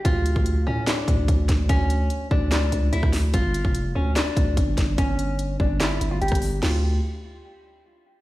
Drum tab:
CC |------------------------------------------------|------------------------------------------------|------------------------------------------------|------------------------------------------------|
HH |x-----x-----x-----------x-----x-----x-----x-----|x-----x-----x-----------x-----x-----x-----o-----|x-----x-----x-----------x-----x-----x-----x-----|x-----x-----x-----------x-----x-----x-x-x-o-----|
CP |------------------------x-----------------------|------------------------x-----------------------|------------------------x-----------------------|------------------------x-----------------------|
SD |------------------------o-----------------o-----|------------------------o--------------r--o-----|------------------------o-----------------o-----|------------------------o--------------r--------|
BD |o--------o--------------------o-----o-----o-----|o-----------------o--------------------o--------|o--------o--------------------o-----o-----o-----|o-----------------o--------------------o--------|

CC |x-----------------------------------------------|
HH |------------------------------------------------|
CP |------------------------------------------------|
SD |o-----------------------------------------------|
BD |------------------------------------------------|